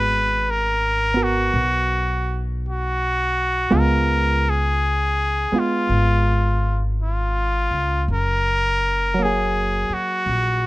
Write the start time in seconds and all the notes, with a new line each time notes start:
Already playing: G#1 G#3 B3 F#4 B4
0.50 A#4
1.14 B3 F#4 A#4
1.23 F#4
1.54 B1
2.69 F#4
3.71 C#2 G#3 B3 F4
3.79 A#4
4.50 G#4
5.52 G#3 B3 F4, muted upright bass stroke
5.59 F4
5.89 G#1
7.03 F4
7.71 C#2
8.08 F#1
8.13 A#4
9.14 F#3
9.19 A#3 G#4
9.25 G#4
9.90 F#4, muted upright bass stroke
10.26 A#1